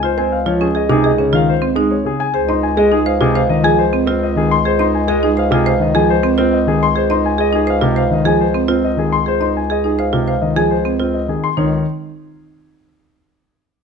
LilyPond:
<<
  \new Staff \with { instrumentName = "Grand piano" } { \time 4/4 \key des \major \tempo 4 = 104 c''16 aes''16 f''16 des''16 aes'16 ees''16 aes'16 ees''16 des''16 f''16 c''16 r8 des''16 aes'16 aes''16 | c''16 c'''16 aes''16 ees''16 aes'16 f''16 aes'16 f''16 ees''16 aes''16 c''16 r8 ees''16 aes'16 c'''16 | c''16 c'''16 aes''16 ees''16 aes'16 f''16 aes'16 f''16 ees''16 aes''16 c''16 r8 ees''16 aes'16 c'''16 | c''16 c'''16 aes''16 ees''16 aes'16 f''16 r16 f''16 ees''16 aes''16 c''16 r8 ees''16 aes'16 c'''16 |
c''16 c'''16 aes''16 ees''16 aes'16 f''16 r16 f''16 ees''16 aes''16 c''16 r8 ees''16 aes'16 c'''16 | des''8 r2. r8 | }
  \new Staff \with { instrumentName = "Marimba" } { \time 4/4 \key des \major f'16 c''16 r16 f'16 des'16 aes'16 ees'16 aes'16 des'16 f'16 r16 c'16 ees'16 r8. | aes'16 ees''16 r16 aes'16 ees'16 c''16 f'16 c''16 r16 aes'16 r16 c'16 f'16 r8. | aes'16 ees''16 r16 aes'16 ees'16 c''16 f'16 c''16 r16 aes'16 r16 c'16 f'16 r8. | aes'16 ees''16 r16 aes'16 ees'16 c''16 f'16 c''16 r16 aes'16 r16 c'16 f'16 r8. |
aes'16 ees''16 r16 aes'16 ees'16 c''16 f'16 c''16 r16 aes'16 r16 c'16 f'16 r8. | ees'8 r2. r8 | }
  \new Staff \with { instrumentName = "Grand piano" } { \clef bass \time 4/4 \key des \major r16 c'16 r16 f16 r8 c16 r16 des16 ees16 r8 aes16 r16 des16 r16 | r16 ees'16 r16 aes16 r8 c16 r16 ees16 f16 r8 c'16 r16 ees16 r16 | r16 ees'16 r16 aes16 r8 c16 r16 ees16 f16 r8 c'16 r16 ees16 r16 | r16 ees'16 r4 c16 r16 ees16 f16 r8 c'16 r16 ees16 r16 |
r16 ees'16 r4 c16 r16 ees16 f16 r8 c'16 r16 ees16 r16 | ees8 r2. r8 | }
  \new Staff \with { instrumentName = "Bass clarinet" } { \clef bass \time 4/4 \key des \major des,1 | des,1~ | des,1~ | des,1~ |
des,1 | des,8 r2. r8 | }
>>